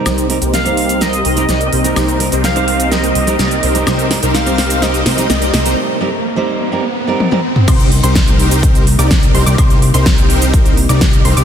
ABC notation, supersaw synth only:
X:1
M:4/4
L:1/16
Q:1/4=126
K:Cm
V:1 name="Supersaw synth"
[CEGBc]2 z [CEGBc]6- [CEGBc] [CEGBc]2 [CEGBd]2 [CEGBc]2 | [CEGBc]2 z [CEGBc]6- [CEGBc] [CEGBc]2 [CEGBd]2 [CEGBc]2 | [CEGBc]2 z [CEGBc]6- [CEGBc] [CEGBc]2 [CEGBd]2 [CEGBc]2 | z16 |
[CEGBc]2 z [CEGBc]6- [CEGBc] z [CEGBd]3 [CEGBc] [CEGBd] | [CEGBc]2 z [CEGBc]6- [CEGBc] z [CEGBd]3 [CEGBc] [CEGBd] |]